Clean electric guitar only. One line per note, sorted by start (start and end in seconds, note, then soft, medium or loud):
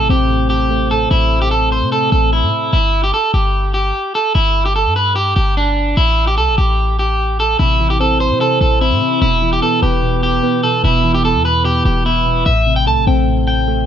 0.10 0.48 G4 medium
0.50 0.88 G4 medium
0.91 1.08 A4 medium
1.11 1.39 E4 medium
1.42 1.50 G4 medium
1.51 1.69 A4 medium
1.72 1.89 C5 medium
1.92 2.10 A4 loud
2.12 2.30 A4 medium
2.33 2.71 E4 medium
2.73 3.02 E4 medium
3.04 3.12 G4 medium
3.14 3.31 A4 medium
3.34 3.72 G4 medium
3.74 4.12 G4 medium
4.15 4.33 A4 medium
4.35 4.64 E4 medium
4.65 4.74 G4 medium
4.76 4.93 A4 medium
4.96 5.14 B4 medium
5.16 5.33 G4 loud
5.36 5.54 G4 medium
5.57 5.95 D4 medium
5.97 6.26 E4 loud
6.27 6.36 G4 medium
6.38 6.55 A4 medium
6.58 6.96 G4 medium
6.99 7.37 G4 medium
7.40 7.57 A4 medium
7.59 7.88 E4 loud
7.90 7.99 G4 medium
8.01 8.18 A4 medium
8.20 8.38 C5 medium
8.41 8.58 A4 medium
8.61 8.79 A4 medium
8.81 9.19 E4 medium
9.22 9.50 E4 loud
9.53 9.61 G4 medium
9.62 9.80 A4 medium
9.83 10.21 G4 medium
10.23 10.61 G4 medium
10.63 10.81 A4 medium
10.84 11.13 E4 loud
11.14 11.23 G4 medium
11.25 11.42 A4 medium
11.45 11.63 B4 medium
11.65 11.83 G4 loud
11.86 12.03 G4 medium
12.06 12.44 E4 medium
12.46 12.75 E5 loud
12.76 12.85 G5 medium
12.87 13.05 A5 medium
13.07 13.45 G5 medium
13.47 13.86 G5 medium